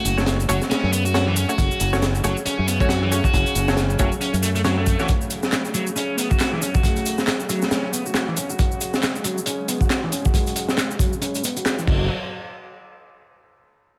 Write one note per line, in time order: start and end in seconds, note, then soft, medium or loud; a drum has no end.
0.00 11.84 C#3 medium
0.00 11.84 F#3 medium
0.00 1.57 A3 medium
0.00 0.16 F#4 medium
0.05 0.45 F#1 medium
0.05 closed hi-hat medium
0.05 shaker medium
0.17 0.47 A3 medium
0.17 0.47 C#4 medium
0.17 0.47 F#4 medium
0.17 0.47 C#5 medium
0.17 snare medium
0.17 shaker soft
0.26 snare loud
0.26 closed hi-hat medium
0.26 shaker soft
0.40 shaker soft
0.49 0.59 F#1 medium
0.49 0.61 F#3 medium
0.49 0.57 A3 loud
0.49 0.57 C#4 medium
0.49 0.57 F#4 medium
0.49 0.57 C#5 loud
0.49 closed hi-hat medium
0.49 shaker medium
0.62 snare soft
0.62 shaker soft
0.70 0.91 C#4 loud
0.70 snare loud
0.70 closed hi-hat medium
0.70 shaker soft
0.83 1.44 F#2 medium
0.92 1.03 B3 loud
0.92 closed hi-hat medium
0.92 shaker medium
1.05 1.26 F#4 loud
1.05 shaker soft
1.14 1.46 A3 medium
1.14 1.46 C#4 medium
1.14 1.46 F#4 medium
1.14 1.46 C#5 medium
1.14 snare loud
1.14 closed hi-hat medium
1.14 shaker soft
1.27 1.35 E3 medium
1.36 1.48 C#4 medium
1.36 closed hi-hat medium
1.36 shaker medium
1.49 1.58 A3 medium
1.49 1.58 C#4 medium
1.49 1.91 F#4 medium
1.49 1.58 F#4 medium
1.49 1.58 C#5 medium
1.49 shaker soft
1.58 1.68 F#1 loud
1.58 5.08 C#4 medium
1.58 kick loud
1.58 closed hi-hat medium
1.58 shaker soft
1.71 shaker soft
1.80 2.21 F#1 loud
1.80 closed hi-hat medium
1.80 shaker medium
1.93 2.02 A3 loud
1.93 2.02 C#4 medium
1.93 2.02 F#4 medium
1.93 2.02 C#5 loud
1.93 snare soft
1.93 shaker soft
2.02 snare loud
2.02 closed hi-hat medium
2.02 shaker soft
2.15 shaker soft
2.24 2.34 F#1 medium
2.24 2.36 F#3 medium
2.24 2.78 A3 medium
2.24 2.78 C#4 medium
2.24 2.77 F#4 medium
2.24 2.78 C#5 medium
2.24 closed hi-hat medium
2.24 shaker medium
2.37 shaker soft
2.46 2.67 C#4 loud
2.46 muted fingered electric bass stroke soft
2.46 closed hi-hat medium
2.46 shaker soft
2.59 3.19 F#2 medium
2.68 2.78 B3 loud
2.68 closed hi-hat medium
2.68 shaker medium
2.80 2.90 A3 medium
2.80 2.90 C#4 medium
2.80 3.01 F#4 loud
2.80 2.90 F#4 medium
2.80 2.90 C#5 loud
2.80 kick medium
2.80 shaker soft
2.89 snare loud
2.89 closed hi-hat medium
2.89 shaker soft
3.02 3.11 E3 medium
3.11 3.19 A3 medium
3.11 3.19 C#4 medium
3.11 3.23 C#4 medium
3.11 3.19 F#4 medium
3.11 3.19 C#5 medium
3.11 closed hi-hat medium
3.11 shaker medium
3.24 3.67 F#4 medium
3.24 kick medium
3.24 shaker soft
3.33 3.43 F#1 loud
3.33 kick loud
3.33 closed hi-hat medium
3.33 shaker soft
3.46 closed hi-hat soft
3.46 shaker soft
3.55 3.96 F#1 loud
3.55 closed hi-hat medium
3.55 shaker medium
3.68 3.97 A3 medium
3.68 3.97 C#4 medium
3.68 3.97 F#4 medium
3.68 3.97 C#5 medium
3.68 snare medium
3.68 shaker soft
3.77 snare loud
3.77 closed hi-hat medium
3.77 shaker soft
3.90 shaker soft
3.99 4.09 F#1 medium
3.99 4.11 F#3 medium
3.99 4.07 A3 loud
3.99 4.07 C#4 medium
3.99 4.07 F#4 medium
3.99 4.07 C#5 loud
3.99 kick loud
3.99 closed hi-hat medium
3.99 shaker medium
4.12 shaker soft
4.21 4.32 C#4 medium
4.21 closed hi-hat medium
4.21 shaker soft
4.34 4.94 F#2 medium
4.34 closed hi-hat soft
4.34 shaker soft
4.43 4.49 A3 medium
4.43 closed hi-hat medium
4.43 shaker medium
4.55 4.60 A3 medium
4.55 closed hi-hat soft
4.55 shaker soft
4.65 4.76 F#3 medium
4.65 4.97 A3 medium
4.65 4.96 C#4 medium
4.65 4.96 F#4 medium
4.65 4.96 C#5 loud
4.65 snare loud
4.65 closed hi-hat medium
4.65 shaker soft
4.77 4.85 A3 medium
4.86 4.98 A3 medium
4.86 kick loud
4.86 closed hi-hat medium
4.86 shaker medium
4.99 5.07 E3 medium
4.99 5.09 A3 medium
4.99 5.09 C#4 medium
4.99 5.09 F#4 medium
4.99 5.09 C#5 loud
4.99 snare soft
4.99 shaker soft
5.08 8.58 A3 medium
5.08 kick loud
5.08 closed hi-hat medium
5.08 shaker soft
5.21 shaker soft
5.30 closed hi-hat medium
5.30 shaker medium
5.43 snare medium
5.43 shaker soft
5.52 snare loud
5.52 clap loud
5.52 closed hi-hat medium
5.52 shaker soft
5.65 shaker soft
5.74 5.86 F#3 medium
5.74 closed hi-hat medium
5.74 shaker medium
5.87 shaker soft
5.96 6.17 C#4 loud
5.96 closed hi-hat medium
5.96 shaker soft
6.18 6.28 B3 loud
6.18 closed hi-hat medium
6.18 shaker medium
6.30 6.51 F#4 loud
6.30 kick loud
6.30 shaker soft
6.40 snare loud
6.40 clap loud
6.40 closed hi-hat loud
6.40 shaker soft
6.53 6.61 E3 medium
6.62 6.73 C#4 medium
6.62 closed hi-hat medium
6.62 shaker medium
6.74 7.17 F#4 medium
6.74 kick loud
6.74 shaker soft
6.83 kick loud
6.83 closed hi-hat medium
6.83 shaker soft
6.96 closed hi-hat soft
6.96 shaker soft
7.06 closed hi-hat medium
7.06 shaker medium
7.18 snare medium
7.18 shaker soft
7.27 snare loud
7.27 clap loud
7.27 closed hi-hat medium
7.27 shaker soft
7.40 shaker soft
7.49 7.62 F#3 medium
7.49 closed hi-hat medium
7.49 shaker medium
7.62 snare soft
7.62 shaker soft
7.71 7.92 C#4 loud
7.71 snare loud
7.71 closed hi-hat medium
7.71 shaker soft
7.93 8.03 B3 loud
7.93 closed hi-hat medium
7.93 shaker medium
8.06 8.27 F#4 loud
8.06 shaker soft
8.14 snare loud
8.14 clap medium
8.14 closed hi-hat medium
8.14 shaker soft
8.28 8.36 E3 medium
8.37 8.49 C#4 medium
8.37 closed hi-hat medium
8.37 shaker medium
8.50 8.92 F#4 medium
8.50 shaker soft
8.59 11.85 G#3 medium
8.59 kick loud
8.59 closed hi-hat medium
8.59 shaker soft
8.71 shaker soft
8.81 closed hi-hat medium
8.81 shaker medium
8.94 snare medium
8.94 shaker soft
9.03 snare loud
9.03 clap loud
9.03 closed hi-hat medium
9.03 shaker soft
9.16 shaker soft
9.24 9.37 F#3 medium
9.24 closed hi-hat medium
9.24 shaker medium
9.38 shaker soft
9.46 9.68 C#4 loud
9.46 closed hi-hat medium
9.46 shaker soft
9.68 9.79 B3 loud
9.68 closed hi-hat medium
9.68 shaker medium
9.81 10.02 F#4 loud
9.81 kick medium
9.81 shaker soft
9.90 snare loud
9.90 clap loud
9.90 closed hi-hat medium
9.90 shaker soft
10.04 10.12 E3 medium
10.12 10.24 C#4 medium
10.12 closed hi-hat medium
10.12 shaker medium
10.25 10.68 F#4 medium
10.25 kick medium
10.25 shaker soft
10.34 kick loud
10.34 closed hi-hat medium
10.34 shaker soft
10.47 closed hi-hat soft
10.47 shaker soft
10.56 closed hi-hat medium
10.56 shaker medium
10.69 snare medium
10.69 shaker soft
10.78 snare loud
10.78 clap loud
10.78 closed hi-hat medium
10.78 shaker soft
10.91 shaker soft
10.99 11.12 F#3 medium
10.99 kick loud
10.99 closed hi-hat medium
10.99 shaker medium
11.13 shaker soft
11.22 11.43 C#4 loud
11.22 closed hi-hat medium
11.22 shaker soft
11.35 closed hi-hat soft
11.35 shaker soft
11.44 11.54 B3 loud
11.44 closed hi-hat medium
11.44 shaker medium
11.57 11.77 F#4 loud
11.57 closed hi-hat soft
11.57 shaker soft
11.66 snare loud
11.66 clap loud
11.66 closed hi-hat medium
11.66 shaker soft
11.79 11.87 E3 medium
11.79 shaker soft
11.87 12.08 F#1 loud
11.87 12.08 F#3 medium
11.87 12.08 F#4 medium
11.87 12.08 A4 medium
11.87 12.08 C#5 medium
11.87 kick loud
11.87 crash medium